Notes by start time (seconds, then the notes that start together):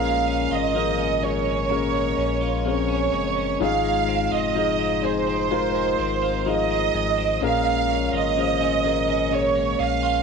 Already playing: A#1 A#2 C#4 F4 G#4 A#4 F5
0.04 G#3
0.27 C#4
0.51 G#1 F4 D#5
0.74 F3 C#4 G#4 A#4
0.99 C#4
1.22 G#3 C#4 G#4 A#4 C#5
1.46 C#4
1.69 A#2 C#4 G#4 A#4
1.93 G#3
2.17 A#1 C#4
2.41 F4
2.65 F3 C4 G#4 A#4 C#5
2.71 C#4
2.89 C#4
3.12 F#1 G#3
3.37 C#4
3.60 G#1 G#2 D#4 F4 G#4 F5
3.84 G#3
4.08 C4
4.32 F1 F4 D#5
4.55 F3 D#4 F4 G#4
4.80 C4
5.03 G#3 D#4 F4 G#4 C5
5.27 C4
5.50 G#2 D#4 F4 A#4
5.75 G#3
5.99 G#1 C4
6.22 F4
6.46 F3 D#4 F4 G#4 D#5
6.70 C4
6.94 G#1 G#3
7.18 C4
7.41 A#1 A#2 C#4 G#4 A#4 F5
7.66 G#3
7.90 C#4
8.13 G#1 F4 D#5
8.36 F3 C#4 G#4 C5
8.61 C#4
8.84 G#3 C#4 G#4 A#4
9.08 C#4
9.31 A#2 C#4 G#4 C#5
9.35 C#5
9.56 G#3
9.79 A#1 C#4 F5
10.03 F4